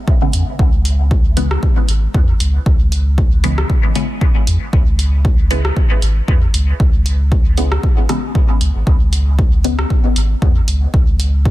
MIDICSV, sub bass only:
0, 0, Header, 1, 2, 480
1, 0, Start_track
1, 0, Key_signature, 4, "minor"
1, 0, Tempo, 517241
1, 550, Time_signature, 4, 2, 24, 8
1, 10679, End_track
2, 0, Start_track
2, 0, Title_t, "Sub bass"
2, 0, Program_c, 0, 38
2, 309, Note_on_c, 0, 40, 91
2, 402, Note_off_c, 0, 40, 0
2, 550, Note_on_c, 0, 37, 104
2, 1458, Note_off_c, 0, 37, 0
2, 1750, Note_on_c, 0, 32, 101
2, 1925, Note_off_c, 0, 32, 0
2, 1990, Note_on_c, 0, 40, 89
2, 2165, Note_off_c, 0, 40, 0
2, 2229, Note_on_c, 0, 37, 80
2, 2405, Note_off_c, 0, 37, 0
2, 2470, Note_on_c, 0, 37, 105
2, 3378, Note_off_c, 0, 37, 0
2, 4150, Note_on_c, 0, 40, 93
2, 4243, Note_off_c, 0, 40, 0
2, 4390, Note_on_c, 0, 37, 102
2, 5298, Note_off_c, 0, 37, 0
2, 5590, Note_on_c, 0, 32, 101
2, 5765, Note_off_c, 0, 32, 0
2, 5830, Note_on_c, 0, 40, 89
2, 6005, Note_off_c, 0, 40, 0
2, 6070, Note_on_c, 0, 37, 79
2, 6245, Note_off_c, 0, 37, 0
2, 6310, Note_on_c, 0, 37, 101
2, 7218, Note_off_c, 0, 37, 0
2, 7990, Note_on_c, 0, 37, 87
2, 8082, Note_off_c, 0, 37, 0
2, 8122, Note_on_c, 0, 32, 101
2, 8198, Note_off_c, 0, 32, 0
2, 8230, Note_on_c, 0, 37, 101
2, 9138, Note_off_c, 0, 37, 0
2, 9430, Note_on_c, 0, 32, 104
2, 9605, Note_off_c, 0, 32, 0
2, 9670, Note_on_c, 0, 40, 84
2, 9845, Note_off_c, 0, 40, 0
2, 9910, Note_on_c, 0, 37, 81
2, 10085, Note_off_c, 0, 37, 0
2, 10150, Note_on_c, 0, 37, 104
2, 10679, Note_off_c, 0, 37, 0
2, 10679, End_track
0, 0, End_of_file